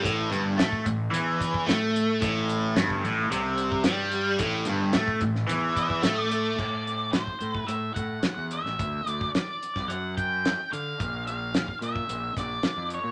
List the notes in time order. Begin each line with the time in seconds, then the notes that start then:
0.02 A1 A2, kick, closed hi-hat
0.30 G1 G2, closed hi-hat
0.58 A2 A3, snare, closed hi-hat
0.72 kick
0.85 A1 A2, kick, closed hi-hat
1.11 E2 E3, closed hi-hat
1.41 kick, closed hi-hat
1.54 kick
1.66 A2 A3, snare, closed hi-hat
1.96 closed hi-hat
2.21 A1 A2, kick, closed hi-hat
2.49 closed hi-hat
2.76 G1 G2, snare, closed hi-hat
2.90 kick
3.04 A1 A2, closed hi-hat
3.31 C2 C3, closed hi-hat
3.58 closed hi-hat
3.72 kick
3.84 G2 G3, snare, closed hi-hat
4.12 closed hi-hat
4.39 A1 A2, kick, closed hi-hat
4.65 G1 G2, closed hi-hat
4.93 A2 A3, snare, closed hi-hat
5.08 kick
5.20 A1 A2, kick, closed hi-hat
5.35 snare
5.47 E2 E3, closed hi-hat
5.76 E5, kick, closed hi-hat
5.90 kick
6.03 A2 A3, snare, closed hi-hat
6.21 D5
6.30 D5, closed hi-hat
6.59 A2, kick, crash
6.87 closed hi-hat
7.12 C5, snare, closed hi-hat
7.27 kick
7.40 A2, closed hi-hat
7.53 B4, kick
7.67 A2 E5, closed hi-hat
7.94 A2 F#5, kick, closed hi-hat
8.23 snare, closed hi-hat
8.37 E2
8.51 E5, closed hi-hat
8.64 A1, snare
8.79 D2, kick, closed hi-hat
9.06 D2 D5, closed hi-hat
9.21 kick
9.35 D5, snare, closed hi-hat
9.63 closed hi-hat
9.76 C2, kick, snare
9.88 F#2 F#5, closed hi-hat
10.17 G5, kick, closed hi-hat
10.45 snare, closed hi-hat
10.72 D3 F5, closed hi-hat
11.00 A#1, kick, closed hi-hat
11.27 F5, closed hi-hat
11.54 snare, closed hi-hat
11.68 kick
11.81 A#2 E5, closed hi-hat
11.96 kick
12.09 A#1, closed hi-hat
12.36 A#1 D5, kick, snare, closed hi-hat
12.63 snare, closed hi-hat
12.76 F2
12.90 C#5, closed hi-hat
13.04 A#2